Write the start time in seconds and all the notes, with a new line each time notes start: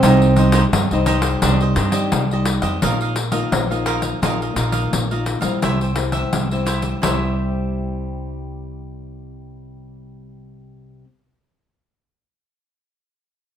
Already playing: C4
0.02 C2 C3 G3 C4 D#4 G4 C5 D#5, pandeiro
0.22 pandeiro
0.36 G3 C4 D#4 G4 C5 D#5, pandeiro
0.52 D#4 G4 C5 D#5, pandeiro
0.72 G2, pandeiro
0.91 C2 G3 C4 D#4 G4 C5 D#5, pandeiro
1.06 D#4 G4 C5 D#5, pandeiro
1.22 G4 C5 D#5, pandeiro
1.42 C2 C4 D4 D#4 G4 C5 D5 D#5, pandeiro
1.61 G4 C5 D#5, pandeiro
1.76 G2 D4 G4 C5 D#5, pandeiro
1.92 D#4 G4 C5 D5 D#5, pandeiro
2.12 C2 G3, pandeiro
2.31 D#4 G4 C5 D5 D#5, pandeiro
2.45 muted cavaquinho stroke, pandeiro
2.62 F2 G4 C5 D#5, pandeiro
2.82 A#1 A#2 A#3 D#4 F4 A#4 D#5 F5, pandeiro
3.01 A#4 D#5 F5, pandeiro
3.16 muted cavaquinho stroke, pandeiro
3.32 A#3 D#4 F4 A#4 D#5 F5, pandeiro
3.52 A#1 F3, pandeiro
3.70 A#3 D#4 F4 A#4 D#5 F5, pandeiro
3.86 F4 A#4 D#5 F5, pandeiro
4.02 A#4 D#5 F5, pandeiro
4.22 A#1 A#2 A#3 D#4 F4 A#4 D#5 F5, pandeiro
4.42 A#4 D#5 F5, pandeiro
4.56 A#1 A#3 D#4 F4 A#4 D#5 F5, pandeiro
4.72 A#4 D#5 F5, pandeiro
4.93 A#1 A#2, pandeiro
5.11 A#3 D#4 F4 A#4 D#5 F5, pandeiro
5.26 muted cavaquinho stroke, pandeiro
5.41 A#1 G3 C4 E4 A#4 D#5 F5, pandeiro
5.62 C2 C3 E4 G4 C5 E5, pandeiro
5.81 G4 C5 E5, pandeiro
5.96 G3 C4 E4, muted cavaquinho stroke, pandeiro
6.12 G4 C5 E5, pandeiro
6.33 C2 G2, pandeiro
6.51 G3 C4 E4 G4 C5 E5, pandeiro
6.66 E4 G4 C5 E5, pandeiro
6.82 G4 C5 E5, pandeiro
7.01 C2 C3 G3 C4 E4 G4 C5 E5, pandeiro
7.07 E4